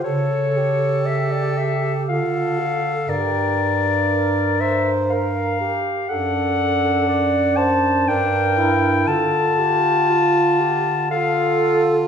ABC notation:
X:1
M:3/4
L:1/16
Q:1/4=60
K:Dm
V:1 name="Clarinet"
^c4 e d e2 f4 | d6 e z f4 | ^f6 a2 g4 | a8 f3 z |]
V:2 name="Alto saxophone"
A2 G6 F2 A2 | G3 z B2 c2 B2 G2 | A4 d2 c2 B4 | A2 G2 F2 G2 A4 |]
V:3 name="Tenor saxophone"
A8 A4 | B8- B3 z | D8 D2 E2 | F8 F4 |]
V:4 name="Bass clarinet" clef=bass
^C,8 D,4 | G,,8- G,,3 z | ^F,,8 G,,4 | D,12 |]